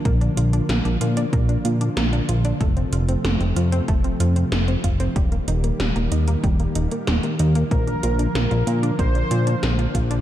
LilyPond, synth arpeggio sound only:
\new Staff \with { instrumentName = "Synth arpeggio sound" } { \time 4/4 \key bes \major \tempo 4 = 94 bes16 d'16 f'16 d'16 bes16 d'16 f'16 d'16 bes16 d'16 f'16 d'16 bes16 d'16 f'16 d'16 | a16 c'16 f'16 c'16 a16 c'16 f'16 c'16 a16 c'16 f'16 c'16 a16 c'16 f'16 c'16 | g16 bes16 ees'16 bes16 g16 bes16 ees'16 bes16 g16 bes16 ees'16 bes16 g16 bes16 ees'16 bes16 | bes16 d'16 f'16 d'16 bes16 f'16 f'16 d'16 bes16 d'16 f'16 d'16 bes16 f'16 f'16 d'16 | }